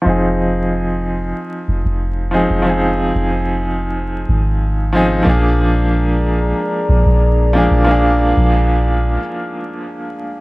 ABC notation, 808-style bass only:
X:1
M:4/4
L:1/16
Q:1/4=92
K:Fdor
V:1 name="808-style bass" clef=bass
F,,,8 z2 F,,, F,,,4 F,,,- | F,,,3 F,,,6- F,,, A,,,6 | B,,,8 z2 B,,, B,,,4 B,,,- | B,,,3 B,,,4- B,,, z8 |]